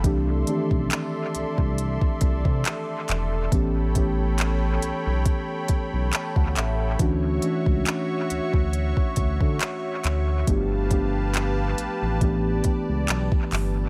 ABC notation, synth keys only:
X:1
M:4/4
L:1/16
Q:"Swing 16ths" 1/4=69
K:D
V:1 name="Synth keys"
[E,A,=CDG]2 [_E,=E,A,CDG]8 z6 | [E,A,B,CG]2 [E,A,B,CG]8 z2 a f e2 | [E,A,CDF]2 [E,A,CDF]8 z6 | [=F,A,B,DG]2 [F,A,B,DG]6 [E,A,B,DG]8 |]